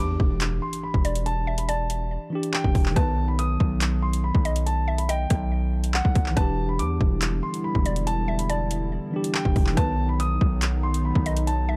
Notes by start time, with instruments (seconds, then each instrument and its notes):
Already playing: tine electric piano E3 D4 G4, synth pluck B4, impact
0.00 808-style bass E2, grand piano D6
0.20 808-style bass E1, kick
0.41 clap, closed hi-hat
0.62 grand piano C6
0.73 closed hi-hat
0.84 grand piano B5
0.94 808-style bass E1, kick
1.05 synth pluck D5, closed hi-hat
1.15 closed hi-hat
1.26 grand piano A5, closed hi-hat
1.47 synth pluck E5
1.58 grand piano B5, closed hi-hat
1.69 synth pluck D5, grand piano A5, closed hi-hat
1.90 closed hi-hat
2.30 tine electric piano E3 D4
2.35 tine electric piano G4
2.43 closed hi-hat
2.54 grand piano G5, clap
2.64 808-style bass E1, kick
2.75 808-style bass E1, kick, open hi-hat
2.86 clap
2.92 tine electric piano D#3
2.96 808-style bass B1, tine electric piano B3, synth pluck B4, grand piano A5, kick, closed hi-hat
3.02 tine electric piano F#3
3.28 grand piano B5
3.39 grand piano D#6, closed hi-hat
3.60 808-style bass B1, kick
3.81 clap, closed hi-hat
4.02 grand piano C6
4.13 closed hi-hat
4.24 grand piano B5
4.35 808-style bass B1, kick
4.45 synth pluck D#5, closed hi-hat
4.56 closed hi-hat
4.66 grand piano A5, closed hi-hat
4.88 synth pluck E5
4.98 grand piano B5, closed hi-hat
5.09 synth pluck D#5, grand piano G5, closed hi-hat
5.30 808-style bass B1, kick, cross-stick, closed hi-hat
5.84 closed hi-hat
5.94 grand piano F#5, clap
6.05 808-style bass B1, kick
6.15 808-style bass B1, kick, closed hi-hat
6.26 clap
6.31 tine electric piano E3
6.36 808-style bass E1, analog synth pad D3 G3 B3 E4, tine electric piano D4, synth pluck B4, grand piano A5, kick, closed hi-hat
6.41 tine electric piano G4
6.69 grand piano B5
6.79 808-style bass E2, grand piano D6, closed hi-hat
7.01 808-style bass E1, kick
7.22 clap, closed hi-hat
7.43 grand piano C6
7.54 closed hi-hat
7.64 grand piano B5
7.75 808-style bass E1, kick
7.86 synth pluck D5, closed hi-hat
7.96 closed hi-hat
8.07 grand piano A5, closed hi-hat
8.28 synth pluck E5
8.39 grand piano B5, closed hi-hat
8.49 synth pluck D5, grand piano A5, closed hi-hat
8.71 closed hi-hat
9.11 tine electric piano E3 D4
9.16 tine electric piano G4
9.24 closed hi-hat
9.34 grand piano G5, clap
9.45 808-style bass E1, kick
9.56 808-style bass E1, kick, open hi-hat
9.67 clap
9.72 tine electric piano D#3
9.77 808-style bass B1, analog synth pad D#3 F#3 B3 D#4, tine electric piano B3, synth pluck B4, grand piano A5, kick, closed hi-hat
9.83 tine electric piano F#3
10.09 grand piano B5
10.20 grand piano D#6, closed hi-hat
10.41 808-style bass B1, kick
10.62 clap, closed hi-hat
10.83 grand piano C6
10.94 closed hi-hat
11.05 grand piano B5
11.15 808-style bass B1, kick
11.26 synth pluck D#5, closed hi-hat
11.37 closed hi-hat
11.47 grand piano A5, closed hi-hat
11.69 synth pluck E5